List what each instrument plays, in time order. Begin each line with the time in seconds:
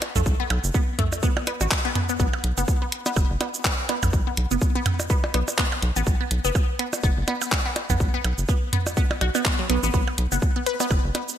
0.02 closed hi-hat, percussion blips
0.16 analog synth bass B1, synth arpeggio sound A3, mid tom, shaker
0.26 analog synth bass B1, kick, shaker
0.40 synth arpeggio sound B3
0.50 analog synth bass B1, closed hi-hat, percussion blips
0.64 analog synth bass F#1, shaker
0.74 synth arpeggio sound B3, kick, shaker
0.99 synth arpeggio sound A3, kick, closed hi-hat, mid tom
1.12 percussion blips, shaker
1.23 synth arpeggio sound B3, kick, shaker
1.37 percussion blips
1.47 synth arpeggio sound B3, closed hi-hat, percussion blips
1.61 analog synth bass A1, synth arpeggio sound F#4, percussion blips, shaker
1.71 kick, clap, shaker
1.85 synth arpeggio sound B3
1.95 synth arpeggio sound B3, closed hi-hat, mid tom
2.09 synth arpeggio sound B3, shaker
2.20 analog synth bass B1, synth arpeggio sound B3, kick, shaker
2.33 percussion blips
2.44 analog synth bass B1, closed hi-hat
2.58 analog synth bass F#1, synth arpeggio sound B3, shaker
2.68 kick, shaker
2.82 synth arpeggio sound B3
2.92 closed hi-hat
3.06 synth arpeggio sound B3, percussion blips, shaker
3.16 analog synth bass F#1, kick, percussion blips, shaker
3.30 analog synth bass F#1
3.41 synth arpeggio sound B3, closed hi-hat, percussion blips
3.54 shaker
3.65 synth arpeggio sound B3, kick, clap, shaker
3.89 synth arpeggio sound B3, closed hi-hat, percussion blips
4.03 analog synth bass B1, mid tom, percussion blips, shaker
4.13 analog synth bass B1, kick, shaker
4.27 synth arpeggio sound B3
4.37 analog synth bass B1, closed hi-hat
4.51 analog synth bass F#1, synth arpeggio sound B3, shaker
4.62 kick, shaker
4.75 synth arpeggio sound B3
4.86 closed hi-hat, mid tom, percussion blips
5.00 percussion blips, shaker
5.10 synth arpeggio sound B3, kick, shaker
5.24 percussion blips
5.34 analog synth bass B1, synth arpeggio sound B3, closed hi-hat, percussion blips
5.48 percussion blips, shaker
5.58 synth arpeggio sound B3, kick, clap, shaker
5.72 percussion blips
5.83 analog synth bass B1, closed hi-hat
5.96 analog synth bass A1, synth arpeggio sound B3, shaker
6.07 analog synth bass B1, kick, shaker
6.21 synth arpeggio sound B3
6.31 analog synth bass B1, closed hi-hat
6.45 analog synth bass F#1, synth arpeggio sound B3, shaker
6.55 kick, percussion blips, shaker
6.79 synth arpeggio sound B3, closed hi-hat
6.93 percussion blips, shaker
7.03 analog synth bass F#1, synth arpeggio sound B3, kick, shaker
7.17 analog synth bass F#1
7.28 synth arpeggio sound B3, closed hi-hat, percussion blips
7.41 percussion blips, shaker
7.52 kick, clap, shaker
7.66 synth arpeggio sound B3
7.76 closed hi-hat, percussion blips
7.90 analog synth bass B1, synth arpeggio sound B3, mid tom, shaker
8.00 analog synth bass B1, kick, shaker
8.14 synth arpeggio sound B3
8.24 analog synth bass B1, closed hi-hat, percussion blips
8.38 analog synth bass F#1, shaker
8.49 synth arpeggio sound B3, kick, shaker
8.73 synth arpeggio sound B3, closed hi-hat, mid tom
8.87 percussion blips, shaker
8.97 synth arpeggio sound B3, kick, shaker
9.11 percussion blips
9.21 analog synth bass B1, synth arpeggio sound F#4, closed hi-hat, percussion blips
9.35 synth arpeggio sound B3, percussion blips, shaker
9.45 kick, clap, shaker
9.59 synth arpeggio sound F#3
9.70 analog synth bass B1, synth arpeggio sound B3, closed hi-hat
9.83 analog synth bass A1, synth arpeggio sound B3, shaker
9.94 analog synth bass B1, synth arpeggio sound B3, kick, shaker
10.08 percussion blips
10.18 analog synth bass B1, closed hi-hat
10.32 analog synth bass F#1, synth arpeggio sound B3, shaker
10.42 kick, shaker
10.56 synth arpeggio sound B3
10.66 synth arpeggio sound B4, closed hi-hat
10.80 synth arpeggio sound B3, percussion blips, shaker
10.91 analog synth bass F#1, kick, percussion blips, shaker
11.04 analog synth bass F#1
11.15 synth arpeggio sound B3, closed hi-hat, percussion blips
11.29 shaker